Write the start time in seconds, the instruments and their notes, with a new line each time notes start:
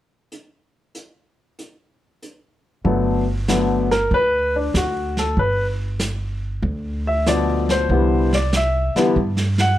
0.32 closed hi-hat
0.95 closed hi-hat
1.59 closed hi-hat
2.22 closed hi-hat
2.85 upright bass G1, upright piano D3 F#3 A3 B3, brush sweep, kick
3.48 upright piano D3 F#3 A3 B3, snare, hi-hat pedal
3.91 upright piano A#4, snare
4.11 upright bass D2, upright piano B4, brush sweep, kick
4.56 upright piano D4
4.74 upright bass D2, upright piano F#4, snare, hi-hat pedal
5.17 upright piano A4, snare
5.37 upright bass G1, upright piano B4, brush sweep, kick
5.99 snare, hi-hat pedal
6.62 upright bass D2, brush sweep, kick
7.07 upright piano E5
7.26 upright piano B2 D3 F3 A3 D5, snare, hi-hat pedal
7.69 upright piano C5, snare
7.89 upright bass C2, upright piano D3 E3 G3 B3, brush sweep, kick
8.33 upright piano D5, snare
8.53 upright piano E5, snare, hi-hat pedal
8.95 upright piano D3 E3 G3 B3, muted upright bass stroke, snare
9.16 upright bass G2, brush sweep, kick
9.37 snare
9.58 upright piano F#5, snare